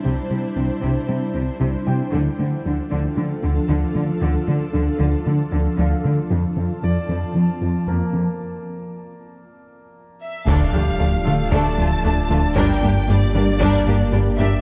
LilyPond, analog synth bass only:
\new Staff \with { instrumentName = "Analog synth bass" } { \clef bass \time 4/4 \key d \minor \tempo 4 = 115 c,8 c8 c,8 c,8 c8 c,8 c,8 c8 | d,8 d8 d,8 d,8 d8 d,8 d,8 d8 | d,8 d8 d,8 d,8 d8 d,8 d,8 d8 | f,8 f8 f,8 f,8 f8 f,8 f,8 f8 |
r1 | d,8 d,8 d,8 d8 d,8 d,8 d,8 d,8 | g,8 g,8 g,8 g8 g,8 g,8 g,8 g,8 | }